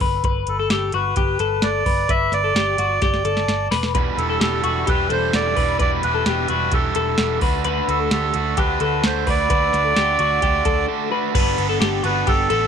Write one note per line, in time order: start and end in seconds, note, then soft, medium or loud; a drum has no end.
0.00 0.20 G1 medium
0.00 0.24 B4 medium
0.00 kick medium
0.00 open hi-hat medium
0.24 0.43 G1 loud
0.24 0.57 B4 medium
0.24 kick medium
0.24 closed hi-hat medium
0.47 0.67 G1 medium
0.47 0.70 A4 medium
0.47 closed hi-hat medium
0.60 0.70 A4 medium
0.70 0.89 G1 medium
0.70 0.94 G4 medium
0.70 0.93 A4 medium
0.70 snare loud
0.70 closed hi-hat medium
0.92 1.12 G1 medium
0.92 1.17 F#4 medium
0.92 1.66 B4 medium
0.92 closed hi-hat medium
1.16 1.36 G1 loud
1.16 1.40 G4 medium
1.16 kick loud
1.16 closed hi-hat medium
1.39 1.59 G1 medium
1.39 1.84 A4 medium
1.39 closed hi-hat medium
1.62 1.81 G1 medium
1.62 2.11 D5 medium
1.62 snare loud
1.62 closed hi-hat medium
1.86 2.05 G1 medium
1.86 2.08 B4 medium
1.86 kick medium
1.86 open hi-hat medium
2.09 2.28 G1 loud
2.09 2.42 B4 medium
2.09 2.33 E5 loud
2.09 kick medium
2.09 closed hi-hat medium
2.32 2.51 G1 medium
2.32 3.01 D5 loud
2.32 snare soft
2.32 closed hi-hat medium
2.44 2.55 A4 medium
2.55 2.74 G1 medium
2.55 2.78 G4 medium
2.55 snare medium
2.55 closed hi-hat medium
2.78 2.98 G1 medium
2.78 3.02 F#4 medium
2.78 closed hi-hat medium
3.02 3.21 G1 loud
3.02 3.25 G4 medium
3.02 3.68 D5 medium
3.02 kick medium
3.02 snare medium
3.02 closed hi-hat medium
3.14 snare soft
3.25 3.44 G1 medium
3.25 3.69 A4 medium
3.25 closed hi-hat medium
3.37 snare medium
3.48 3.67 G1 medium
3.48 snare medium
3.48 closed hi-hat medium
3.71 4.10 E1 medium
3.71 3.94 B4 medium
3.71 snare medium
3.71 open hi-hat medium
3.83 snare medium
3.95 4.18 E2 medium
3.95 4.18 B2 medium
3.95 4.18 E3 medium
3.95 4.18 G3 medium
3.95 4.17 D4 medium
3.95 4.16 E4 medium
3.95 4.27 B4 medium
3.95 kick loud
3.95 closed hi-hat medium
4.17 4.37 E1 medium
4.17 4.41 E3 soft
4.17 4.41 G3 soft
4.17 4.41 D4 soft
4.17 4.41 E4 soft
4.17 4.40 A4 medium
4.17 closed hi-hat medium
4.30 4.40 A4 medium
4.40 4.60 E1 medium
4.40 4.64 E2 medium
4.40 4.64 B2 medium
4.40 4.65 E3 medium
4.40 4.65 G3 medium
4.40 4.64 D4 medium
4.40 4.63 E4 medium
4.40 4.63 G4 medium
4.40 4.89 A4 medium
4.40 snare loud
4.40 closed hi-hat medium
4.64 4.83 E1 medium
4.64 4.86 E3 soft
4.64 4.87 G3 soft
4.64 4.88 D4 soft
4.64 4.87 E4 soft
4.64 4.87 F#4 medium
4.64 closed hi-hat medium
4.87 5.07 E1 loud
4.87 5.33 E3 medium
4.87 5.33 G3 medium
4.87 5.35 D4 medium
4.87 5.34 E4 medium
4.87 5.09 G4 medium
4.87 5.12 B4 medium
4.87 kick medium
4.87 closed hi-hat medium
5.10 5.29 E1 medium
5.10 5.54 A4 medium
5.10 5.35 C5 medium
5.10 closed hi-hat medium
5.33 5.53 E1 medium
5.33 5.57 E2 medium
5.33 5.57 B2 medium
5.33 5.57 E3 medium
5.33 5.57 G3 medium
5.33 5.57 D4 medium
5.33 5.56 E4 medium
5.33 5.77 D5 loud
5.33 snare loud
5.33 closed hi-hat medium
5.56 5.76 E1 medium
5.56 5.81 G3 soft
5.56 5.81 D4 soft
5.56 5.80 E4 soft
5.56 5.78 B4 medium
5.56 kick medium
5.56 open hi-hat medium
5.61 5.80 E3 soft
5.79 5.99 E1 medium
5.79 6.03 E2 medium
5.79 6.04 B2 medium
5.79 6.04 E3 medium
5.79 6.04 G3 medium
5.79 6.03 D4 medium
5.79 6.02 E4 medium
5.79 6.12 B4 medium
5.79 5.91 D5 loud
5.79 kick medium
5.79 closed hi-hat medium
6.03 6.22 E1 medium
6.03 6.25 E3 soft
6.03 6.26 G3 soft
6.03 6.26 D4 soft
6.03 6.26 E4 medium
6.03 6.75 B4 medium
6.03 closed hi-hat medium
6.15 6.26 A4 medium
6.26 6.45 E1 medium
6.26 6.49 E2 medium
6.26 6.49 B2 medium
6.26 6.50 E3 medium
6.26 6.50 G3 medium
6.26 6.49 D4 medium
6.26 6.48 E4 medium
6.26 6.49 G4 medium
6.26 snare medium
6.26 closed hi-hat medium
6.48 6.68 E1 medium
6.48 6.72 G3 soft
6.48 6.73 D4 soft
6.48 6.72 E4 medium
6.48 6.73 F#4 medium
6.48 closed hi-hat medium
6.52 6.71 E3 soft
6.72 6.91 E1 loud
6.72 7.18 E3 medium
6.72 7.18 G3 medium
6.72 7.19 D4 medium
6.72 7.19 E4 medium
6.72 6.96 G4 medium
6.72 7.38 A4 medium
6.72 kick medium
6.72 closed hi-hat medium
6.95 7.15 E1 medium
6.95 7.39 A4 medium
6.95 closed hi-hat medium
7.18 7.38 E1 medium
7.18 7.42 E2 medium
7.18 7.42 B2 medium
7.18 7.42 E3 medium
7.18 7.42 G3 medium
7.18 7.42 D4 medium
7.18 7.41 E4 medium
7.18 snare loud
7.18 closed hi-hat medium
7.41 7.80 D2 medium
7.41 7.65 A3 soft
7.41 7.65 D4 soft
7.41 7.65 F#4 medium
7.41 7.64 B4 medium
7.41 kick loud
7.41 open hi-hat medium
7.64 7.88 D3 medium
7.64 7.89 A3 medium
7.64 7.89 D4 medium
7.64 7.87 F#4 medium
7.64 8.00 B4 medium
7.64 closed hi-hat medium
7.88 8.07 D2 medium
7.88 8.10 A3 soft
7.88 8.11 D4 soft
7.88 8.11 F#4 soft
7.88 8.10 A4 medium
7.88 closed hi-hat medium
8.00 8.11 A4 medium
8.11 8.31 D2 medium
8.11 8.34 D3 medium
8.11 8.35 A3 medium
8.11 8.34 D4 medium
8.11 8.32 F#4 medium
8.11 8.35 G4 medium
8.11 8.59 A4 medium
8.11 snare loud
8.11 closed hi-hat medium
8.34 8.54 D2 medium
8.34 8.56 A3 soft
8.34 8.58 D4 soft
8.34 8.57 F#4 soft
8.34 8.57 F#4 medium
8.34 closed hi-hat medium
8.56 8.77 D2 loud
8.56 9.02 D3 medium
8.56 9.04 A3 medium
8.56 9.04 D4 medium
8.56 9.04 F#4 medium
8.56 8.81 G4 medium
8.56 8.81 B4 medium
8.56 kick medium
8.56 closed hi-hat medium
8.80 9.00 D2 medium
8.80 9.24 A4 medium
8.80 9.05 B4 medium
8.80 closed hi-hat medium
9.03 9.23 D2 loud
9.03 9.27 D3 medium
9.03 9.27 A3 medium
9.03 9.27 D4 medium
9.03 9.25 F#4 medium
9.03 9.29 C5 medium
9.03 snare loud
9.03 closed hi-hat medium
9.26 9.46 D2 medium
9.26 9.48 A3 soft
9.26 9.49 D4 soft
9.26 9.50 F#4 medium
9.26 9.49 B4 medium
9.26 10.86 D5 loud
9.26 kick medium
9.26 open hi-hat medium
9.49 9.69 D2 medium
9.49 9.73 D3 medium
9.49 9.73 A3 medium
9.49 9.73 D4 medium
9.49 9.71 F#4 medium
9.49 9.85 B4 medium
9.49 kick loud
9.49 closed hi-hat medium
9.72 9.92 D2 medium
9.72 9.95 A3 soft
9.72 9.95 D4 soft
9.72 9.96 F#4 soft
9.72 snare soft
9.72 closed hi-hat medium
9.85 9.96 A4 medium
9.94 10.15 D2 medium
9.94 10.19 D3 medium
9.94 10.19 A3 medium
9.94 10.18 D4 medium
9.94 10.16 F#4 medium
9.94 10.19 G4 medium
9.94 snare loud
9.94 closed hi-hat medium
10.18 10.38 D2 medium
10.18 10.41 A3 soft
10.18 10.42 D4 soft
10.18 10.42 F#4 medium
10.18 closed hi-hat medium
10.42 10.61 D2 loud
10.42 10.87 D3 medium
10.42 10.88 A3 medium
10.42 10.89 D4 medium
10.42 10.89 F#4 medium
10.42 10.65 G4 medium
10.42 kick medium
10.42 closed hi-hat medium
10.65 10.85 D2 medium
10.65 11.09 A4 medium
10.65 kick medium
10.65 closed hi-hat medium
10.88 11.11 D3 medium
10.88 11.12 A3 medium
10.88 11.11 D4 medium
10.88 11.09 F#4 loud
11.10 11.34 A3 soft
11.10 11.34 D4 soft
11.10 11.34 F#4 medium
11.10 11.34 B4 medium
11.34 11.54 G1 loud
11.34 11.57 G3 medium
11.34 11.58 B3 medium
11.34 11.58 D4 loud
11.34 11.56 A4 medium
11.34 11.67 B4 loud
11.34 kick loud
11.34 crash loud
11.34 ride medium
11.57 11.77 G1 loud
11.57 12.06 B3 soft
11.57 12.05 D4 medium
11.57 12.02 A4 medium
11.57 ride medium
11.69 11.80 A4 medium
11.81 12.00 G1 loud
11.81 12.04 G4 medium
11.81 snare loud
11.81 ride medium
12.03 12.23 G1 medium
12.03 12.53 B3 soft
12.03 12.51 D4 soft
12.03 12.27 F#4 medium
12.03 12.49 A4 medium
12.03 12.28 B4 medium
12.03 ride medium
12.27 12.46 G1 loud
12.27 12.50 G4 medium
12.27 12.67 A4 loud
12.27 kick loud
12.27 ride medium
12.50 12.67 A1 medium
12.50 12.67 B3 soft
12.50 12.67 D4 soft
12.50 12.67 A4 medium
12.50 ride medium